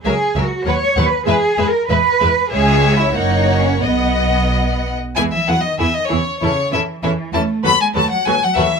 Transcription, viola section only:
X:1
M:2/4
L:1/8
Q:1/4=96
K:B
V:1 name="Viola section" clef=bass
F, F, F, F, | G, G, G, G, | G,2 A,2 | B,3 z |
[K:E] [E,B,] [E,B,] [E,B,] [E,B,] | [E,C] [E,C] [E,C] [E,C] | [F,F] [F,F] [F,F] [F,F] |]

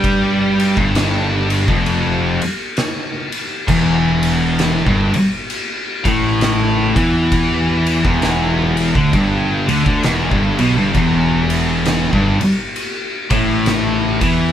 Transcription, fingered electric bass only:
X:1
M:4/4
L:1/16
Q:"Swing" 1/4=66
K:Ephr
V:1 name="Fingered electric bass" clef=bass
G,,3 G,,,4 F,,,3 z6 | E,,,4- E,,, G,,, z4 A,,,4 E,,2- | E,,3 E,,,4 D,, G,,,2 D,, D,, E,,, G,,, B,,, G,,, | E,,,4- E,,, G,,, z4 A,,,4 E,,2 |]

